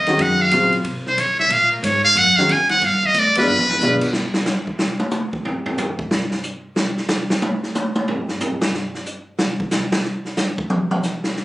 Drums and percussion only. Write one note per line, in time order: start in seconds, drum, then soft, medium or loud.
0.06 snare soft
0.06 ride soft
0.19 ride medium
0.51 hi-hat pedal medium
0.51 ride medium
0.72 ride soft
0.84 ride medium
1.06 snare soft
1.18 hi-hat pedal medium
1.18 ride medium
1.39 snare soft
1.50 ride medium
1.84 hi-hat pedal medium
1.84 ride medium
2.17 ride medium
2.49 hi-hat pedal medium
2.49 ride medium
2.69 snare medium
2.69 ride medium
2.82 ride medium
3.03 kick medium
3.14 hi-hat pedal medium
3.14 ride medium
3.35 kick medium
3.35 ride medium
3.59 mid tom medium
3.70 floor tom medium
3.80 snare medium
3.80 hi-hat pedal medium
4.01 kick medium
4.01 crash medium
4.13 snare medium
4.34 snare loud
4.45 snare medium
4.45 hi-hat pedal medium
4.67 kick medium
4.79 snare loud
4.99 high tom medium
5.11 hi-hat pedal medium
5.11 high tom medium
5.33 kick medium
5.45 floor tom medium
5.66 floor tom medium
5.78 floor tom loud
5.78 hi-hat pedal medium
5.99 kick medium
6.11 snare loud
6.31 snare soft
6.43 hi-hat pedal medium
6.76 snare loud
6.97 snare soft
7.08 snare loud
7.08 hi-hat pedal medium
7.30 snare medium
7.42 high tom loud
7.63 snare soft
7.75 hi-hat pedal medium
7.75 high tom loud
7.96 high tom medium
8.08 floor tom loud
8.29 snare soft
8.40 floor tom loud
8.40 hi-hat pedal medium
8.62 snare medium
8.74 snare medium
8.95 snare soft
9.06 hi-hat pedal medium
9.39 snare loud
9.60 kick medium
9.71 snare loud
9.71 hi-hat pedal medium
9.92 snare loud
10.05 snare soft
10.25 snare soft
10.37 snare medium
10.37 hi-hat pedal medium
10.58 kick medium
10.70 mid tom loud
10.91 mid tom loud
11.03 snare soft
11.03 hi-hat pedal medium
11.24 snare medium
11.36 snare soft